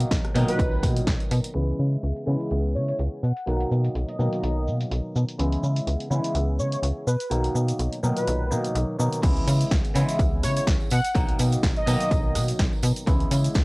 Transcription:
Already playing: clav B2 D#3 F#3 A#3 D#4
0.00 closed hi-hat
0.11 fm bass B1, kick, snare, closed hi-hat
0.25 cross-stick, closed hi-hat
0.34 clav A#2 B2 D#3 F#3 D#4, fm bass B2, open hi-hat, tambourine
0.48 analog polysynth B4, closed hi-hat, tambourine
0.59 fm bass B1, kick, closed hi-hat, tambourine
0.71 tambourine
0.83 fm bass B2, kick, cross-stick, open hi-hat, tambourine
0.96 closed hi-hat, tambourine
1.07 fm bass B1, kick, snare, closed hi-hat
1.20 closed hi-hat, tambourine
1.31 fm bass B2, open hi-hat, tambourine
1.44 closed hi-hat, tambourine
1.54 fm bass C#2, clav C#3 E3 G#3 B3 E4
1.68 closed hi-hat
1.79 fm bass C#3, cabasa
1.92 closed hi-hat, cabasa
2.03 fm bass C#2, closed hi-hat, cabasa
2.16 closed hi-hat
2.26 clav C#3 E3 G#3 B3 E4, fm bass C#3, cabasa
2.40 closed hi-hat, cabasa
2.51 fm bass C#2, closed hi-hat, cabasa
2.75 fm bass C#3, analog polysynth C#5, cabasa
2.88 analog polysynth C#5, closed hi-hat, cabasa
2.99 fm bass C#2, closed hi-hat, cabasa
3.23 fm bass B2, analog polysynth F#5, cabasa
3.37 closed hi-hat, cabasa
3.46 fm bass B1, clav B2 D#3 F#3 A#3 D#4, closed hi-hat, cabasa
3.61 closed hi-hat
3.71 fm bass B2, cabasa
3.85 closed hi-hat, cabasa
3.95 fm bass B1, closed hi-hat, cabasa
4.08 analog polysynth D#5, closed hi-hat
4.19 clav B2 D#3 F#3 A#3 D#4, fm bass B2, cabasa
4.33 closed hi-hat, cabasa
4.43 fm bass B1, closed hi-hat, cabasa
4.67 fm bass B2, cabasa
4.81 closed hi-hat, cabasa
4.91 fm bass B1, closed hi-hat, cabasa
5.16 fm bass B2, cabasa
5.28 closed hi-hat, cabasa
5.38 fm bass C#2, clav C#3 E3 G#3 B3 E4, closed hi-hat, cabasa
5.52 closed hi-hat
5.63 fm bass C#3, tambourine, cabasa
5.76 closed hi-hat, cabasa
5.87 fm bass C#2, closed hi-hat, cabasa
6.00 closed hi-hat
6.10 clav C#3 E3 G#3 B3 E4, fm bass C#3, cabasa
6.24 closed hi-hat, cabasa
6.35 fm bass C#2, closed hi-hat, cabasa
6.59 fm bass C#3, analog polysynth C#5, tambourine, cabasa
6.72 analog polysynth C#5, closed hi-hat, cabasa
6.83 fm bass C#2, closed hi-hat, cabasa
6.97 tambourine
7.07 fm bass B2, analog polysynth B4, tambourine, cabasa
7.20 closed hi-hat, cabasa
7.30 fm bass B1, clav B2 D#3 F#3 A#3 D#4, closed hi-hat, tambourine, cabasa
7.44 closed hi-hat
7.55 fm bass B2, tambourine, cabasa
7.68 closed hi-hat, cabasa
7.79 fm bass B1, closed hi-hat, tambourine, cabasa
7.92 closed hi-hat
8.03 clav A#2 B2 D#3 F#3 D#4, fm bass B2, tambourine, cabasa
8.16 analog polysynth B4, closed hi-hat, cabasa
8.27 fm bass B1, closed hi-hat, cabasa
8.51 clav B2 D#3 F#3 A#3 D#4, fm bass B2, tambourine, cabasa
8.64 closed hi-hat, tambourine, cabasa
8.75 fm bass B1, closed hi-hat, cabasa
8.89 tambourine
8.99 clav B2 D#3 F#3 A#3 D#4, fm bass B2, tambourine, cabasa
9.12 closed hi-hat, cabasa
9.22 fm bass C#2, clav C#3 E3 G#3 B3 E4, kick, closed hi-hat, crash, tambourine, cabasa
9.37 closed hi-hat
9.47 fm bass C#3, open hi-hat, tambourine, cabasa
9.61 closed hi-hat, cabasa
9.71 fm bass C#2, kick, snare, closed hi-hat, tambourine, cabasa
9.85 closed hi-hat
9.94 clav C#3 E3 G#3 B3 E4, fm bass C#3, open hi-hat, tambourine, cabasa
10.08 closed hi-hat, tambourine, cabasa
10.19 fm bass C#2, kick, closed hi-hat, tambourine, cabasa
10.43 fm bass C#3, analog polysynth C#5, cross-stick, open hi-hat, tambourine, cabasa
10.56 analog polysynth C#5, closed hi-hat, tambourine, cabasa
10.67 fm bass C#2, kick, snare, closed hi-hat, tambourine, cabasa
10.80 tambourine
10.90 fm bass B2, analog polysynth F#5, open hi-hat, tambourine, cabasa
11.04 closed hi-hat, tambourine, cabasa
11.15 fm bass B1, clav B2 D#3 F#3 A#3 D#4, kick, closed hi-hat, tambourine, cabasa
11.29 closed hi-hat
11.39 fm bass B2, open hi-hat, tambourine, cabasa
11.52 closed hi-hat, tambourine, cabasa
11.63 fm bass B1, kick, snare, closed hi-hat, tambourine, cabasa
11.77 analog polysynth D#5, closed hi-hat
11.86 clav B2 D#3 F#3 A#3 D#4, fm bass B2, open hi-hat, tambourine, cabasa
12.00 closed hi-hat, tambourine, cabasa
12.11 fm bass B1, kick, closed hi-hat, tambourine, cabasa
12.35 fm bass B2, cross-stick, open hi-hat, tambourine, cabasa
12.48 closed hi-hat, tambourine, cabasa
12.59 fm bass B1, kick, snare, closed hi-hat, tambourine, cabasa
12.73 tambourine
12.82 fm bass B2, open hi-hat, tambourine, cabasa
12.96 closed hi-hat, tambourine, cabasa
13.06 fm bass C#2, clav C#3 E3 G#3 B3 E4, kick, closed hi-hat, tambourine, cabasa
13.20 closed hi-hat
13.31 fm bass C#3, open hi-hat, tambourine, cabasa
13.44 closed hi-hat, tambourine, cabasa
13.54 fm bass C#2, kick, snare, closed hi-hat, tambourine, cabasa

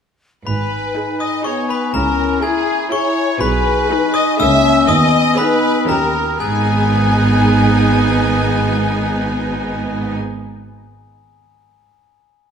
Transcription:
0.45 double bass section G#1, cello section G#2, clarinet D#4, oboe B4, violin section B4, flute G#5, glockenspiel B5
0.95 french horn section D#4, viola section D#4 G#4
1.20 violin section D#5, oboe D#5, glockenspiel D#6
1.44 french horn section B3, viola section D#4 G#4, violin section C#5, oboe C#5, glockenspiel C#6
1.68 violin section B4, oboe B4, glockenspiel B5
1.94 double bass section C#2, cello section C#3, french horn section C#4, clarinet E4, violin section A#4, oboe A#4, glockenspiel A#5
2.42 viola section E4 G#4, french horn section E4, violin section G#4, oboe G#4, glockenspiel G#5
2.91 viola section E4 G#4, french horn section E4, oboe C#5, violin section C#5, glockenspiel C#6
3.40 double bass section B1, cello section B2, clarinet D#4, french horn section G#4, violin section B4, oboe B4, flute G#5, glockenspiel B5
3.90 viola section D#4 G#4, french horn section D#4
4.14 violin section D#5, oboe D#5, glockenspiel D#6
4.39 double bass section C#2, cello section C#3, clarinet A#3, viola section A#3 G#4, french horn section C#4, violin section E5, oboe E5, glockenspiel E6
4.87 double bass section D#2, cello section D#3, clarinet B3, french horn section B3, violin section D#5, oboe D#5, glockenspiel D#6
5.38 viola section B3 G#4, violin section B4, oboe B4, glockenspiel B5
5.88 double bass section D#2, cello section D#3, viola section C#4 G4, clarinet C#4, french horn section G4, oboe A#4, violin section A#4, flute G5, glockenspiel A#5
6.40 double bass section G#1, cello section G#2, viola section B3 D#4, oboe B3, clarinet B3, french horn section B3 D#4, violin section G#4 G#5, flute G#5, glockenspiel G#5

